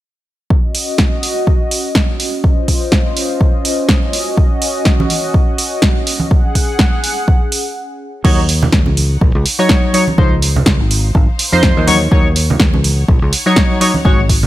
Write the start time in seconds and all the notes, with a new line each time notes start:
0.50 C#4 F#4 D#5, kick
0.75 open hi-hat
0.98 kick, snare
1.23 open hi-hat
1.47 kick
1.71 open hi-hat
1.95 kick, snare
2.20 open hi-hat
2.44 F4 C5 D#5, kick
2.68 kick, open hi-hat
2.92 kick, snare
3.17 open hi-hat
3.41 kick
3.65 open hi-hat
3.89 kick, snare
4.13 F#4, open hi-hat
4.37 kick
4.62 open hi-hat
4.85 kick, snare
5.00 high conga
5.10 open hi-hat
5.34 kick
5.58 open hi-hat
5.82 kick, snare
6.07 open hi-hat
6.20 high conga
6.31 G#4 F#5, kick
6.55 kick, open hi-hat
6.79 kick, snare
7.04 open hi-hat
7.28 kick
7.52 open hi-hat
8.24 D#2 F#3 D#4 C#5, kick, crash
8.49 open hi-hat
8.60 F#5, low conga
8.72 D#2, kick, snare
8.86 C#2, high conga
8.93 C#5
8.97 open hi-hat
9.21 A#1, kick
9.35 C#2
9.46 open hi-hat
9.59 F#3 D#4 C#5
9.69 kick, snare
9.94 F#3 D#4 C#5, open hi-hat
10.08 high conga
10.18 C#2 F3 D#4 C5, kick
10.42 C5, open hi-hat
10.56 low conga
10.66 C#2, kick, snare
10.80 G#1
10.91 F5, open hi-hat
11.15 G#1, kick
11.39 open hi-hat
11.52 F2 F3 D#4 C5
11.63 kick, snare, high conga
11.77 D#2
11.87 F#3 D#4 C#5, open hi-hat, high conga
11.99 C#5
12.11 D#2 F#3 D#4 C#5, kick
12.36 open hi-hat
12.50 low conga
12.60 D#2, kick, snare
12.74 C#2, high conga
12.84 F#5, open hi-hat
13.08 A#1, kick
13.22 C#2
13.33 open hi-hat
13.46 F#3 D#4 C#5
13.56 kick, snare
13.81 F#3 D#4 C#5, open hi-hat
13.94 high conga
14.05 G#1 G#3 F#4 C#5, kick
14.29 kick, open hi-hat
14.43 low conga